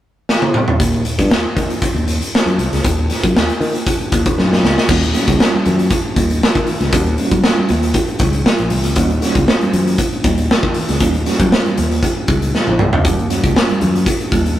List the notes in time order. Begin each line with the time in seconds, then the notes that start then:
0.29 snare
0.42 high tom
0.54 mid tom
0.68 floor tom
0.80 D#2, kick, closed hi-hat
0.93 closed hi-hat
1.05 closed hi-hat
1.18 G2, kick, closed hi-hat
1.31 D#2, snare
1.56 D#3, kick, closed hi-hat
1.70 closed hi-hat
1.82 muted fingered electric bass stroke, kick, closed hi-hat
1.94 D#2, closed hi-hat
2.08 closed hi-hat
2.22 closed hi-hat
2.35 snare
2.46 F#2, closed hi-hat
2.58 C2, closed hi-hat
2.72 C#2, snare, closed hi-hat
2.84 D#2, kick, closed hi-hat
3.10 snare, closed hi-hat
3.23 F#2, kick, closed hi-hat
3.35 D#2, snare
3.50 closed hi-hat
3.61 D#3, open hi-hat
3.75 closed hi-hat
3.87 kick, closed hi-hat
4.00 muted fingered electric bass stroke, closed hi-hat
4.12 D#2, kick, closed hi-hat
4.26 kick, closed hi-hat
4.38 F#2, snare
4.53 snare
4.63 C#2, snare
4.78 snare
4.88 D#2 G3 A#3 C#4 F#4, kick, crash, muted conga, low conga
5.03 closed hi-hat
5.14 F#3 A#3 C#4 F#4, snare, closed hi-hat
5.20 G3
5.28 C#2, kick, closed hi-hat, high conga
5.40 snare
5.53 muted conga, high conga
5.65 F#2, closed hi-hat, low conga
5.79 closed hi-hat
5.90 kick, closed hi-hat, muted conga
6.04 muted conga
6.16 D#2, kick, closed hi-hat, high conga
6.30 closed hi-hat
6.41 snare, high conga
6.55 D#3, kick, closed hi-hat
6.66 open hi-hat, low conga
6.81 C#2, snare, closed hi-hat
6.92 D#2 G3 A#3 C#4 F#4, kick, closed hi-hat, muted conga, low conga
7.06 closed hi-hat, muted conga
7.18 G3 A#3 C#4 D#4, closed hi-hat
7.25 F#4
7.31 F#2, kick, closed hi-hat, high conga
7.44 snare
7.57 high conga
7.68 D#2, closed hi-hat, low conga
7.83 closed hi-hat
7.94 kick, closed hi-hat, muted conga
8.08 closed hi-hat, muted conga
8.19 C#2, kick, closed hi-hat, high conga
8.33 closed hi-hat
8.44 snare, high conga
8.58 A#1, closed hi-hat, muted conga
8.70 C2, open hi-hat, low conga
8.84 C#2, closed hi-hat
8.96 D#2 G3 A#3 C#4 F#4, kick, closed hi-hat, muted conga, low conga
9.10 closed hi-hat, muted conga
9.22 G3 A#3 C#4 F#4, snare, closed hi-hat
9.35 C#2, kick, closed hi-hat, high conga
9.48 snare
9.61 closed hi-hat, muted conga, high conga
9.73 F#2, closed hi-hat, low conga
9.87 closed hi-hat
9.98 kick, closed hi-hat
10.12 closed hi-hat, muted conga
10.24 D#2, kick, closed hi-hat, high conga
10.38 closed hi-hat
10.50 snare, high conga
10.63 D#3, kick
10.74 open hi-hat, low conga
10.89 C#2, snare, closed hi-hat
11.00 D#2 G3 A#3 C#4 D#4, kick, closed hi-hat, muted conga, low conga
11.14 closed hi-hat, muted conga
11.26 G3 A#3 C#4 F#4, snare, closed hi-hat
11.39 F#2, kick, closed hi-hat, high conga
11.52 snare, muted conga
11.66 closed hi-hat, muted conga, high conga
11.77 D#2, closed hi-hat, low conga
11.91 closed hi-hat
12.03 kick, closed hi-hat, muted conga
12.17 muted conga
12.28 C#2, kick, closed hi-hat, high conga
12.42 closed hi-hat
12.55 snare, high conga
12.67 A#1, high tom, muted conga
12.79 C2, mid tom, high conga, low conga
12.93 C#2, floor tom
13.04 D#2 G3 A#3 C#4 F#4, kick, closed hi-hat, low conga
13.19 closed hi-hat, muted conga
13.29 F#3 A#3 C#4 F#4, snare, closed hi-hat
13.36 G3
13.44 C#2, kick, closed hi-hat, high conga
13.56 snare, muted conga
13.69 closed hi-hat, muted conga, high conga
13.80 F#2, closed hi-hat, low conga
13.95 closed hi-hat
14.06 kick, closed hi-hat, muted conga
14.20 closed hi-hat
14.31 D#2, kick, closed hi-hat, high conga
14.46 closed hi-hat